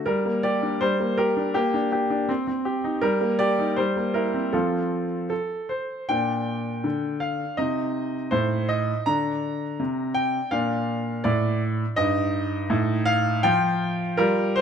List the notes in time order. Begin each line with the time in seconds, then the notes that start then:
0.06 G3 A#4
0.25 A#3
0.43 G4 D5
0.63 D4
0.81 G3 C5
1.00 A#3
1.18 G4 A#4
1.37 D4
1.54 A#3 G4
1.74 D4
1.92 G4
2.10 D4
2.29 C4
2.47 C4
2.65 G4
2.84 D#4
3.01 G3 A#4
3.21 A#3
3.39 G4 D5
3.59 D#4
3.76 G3 C5
3.96 A#3
4.14 E4 A#4
4.34 C4
4.53 F3 C4 F4 A4
5.30 A4
5.69 C5
6.09 A#2 D4 G5
6.84 D3
7.20 F5
7.57 C3 D#4 D#5
8.31 A2 C5
8.69 D#5
9.06 D3 D4 A#5
9.79 C3
10.14 G5
10.51 A#2 D4 F5
11.24 A2 D5
11.96 G2 D#4 D#5
12.70 A2 D#4
13.06 F5
13.43 F3 F4 G5
14.17 G3 F4 A#4
14.56 C5